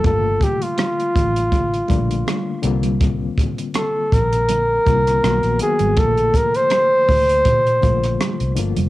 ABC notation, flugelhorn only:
X:1
M:4/4
L:1/16
Q:"Swing 16ths" 1/4=81
K:Gm
V:1 name="Flugelhorn"
A2 G F8- F3 z2 | z4 A2 B8 _A2 | A2 B c8- c3 z2 |]